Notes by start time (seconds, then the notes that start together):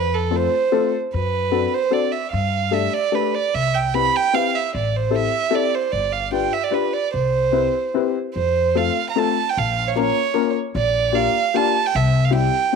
Already playing: F2 B4
0.14 A4
0.31 A3 C4 F4 A4
0.36 C5
0.72 A3 C4 F4 A4
1.14 F#2 B4
1.52 C4 D4 F#4 A4
1.74 C5
1.90 C4 D4 F#4 A4 D5
2.12 E5
2.32 G2 F5
2.71 A3 D4 G4 A4 E5
2.93 D5
3.12 A3 D4 G4 A4 B4
3.35 D5
3.54 C2 E5
3.74 G5
3.94 C4 E4 G4 B4 B5
4.16 G5
4.33 C4 E4 G4 B4 F5
4.55 E5
4.75 A1 D5
4.96 C5
5.10 C4 E4 G4 A4
5.15 E5
5.50 C4 E4 G4 A4
5.55 D5
5.75 C5
5.92 G1 D5
6.12 F5
6.31 D4 F4 G4 B4 G5
6.53 E5
6.64 D5
6.71 D4 F4 G4 B4
6.93 D5
7.14 C2 C5
7.52 C4 E4 G4 B4
7.94 C4 E4 G4 B4
8.34 F2 C5
8.75 A3 C4 F4 A4 F5
9.09 A#5
9.16 A3 C4 F4 A4 A5
9.49 G5
9.57 A#1 F5
9.88 C#5
9.95 A#3 C#4 F4 A#4
10.00 C#5
10.34 A#3 C#4 F4 A#4
10.75 A#1 D5
11.12 A#3 D4 F4 G4 F5
11.54 A#3 D4 F4 G4 A5
11.86 G5
11.95 C2 E5
12.25 F5
12.31 G3 C4 E4 G4
12.35 G5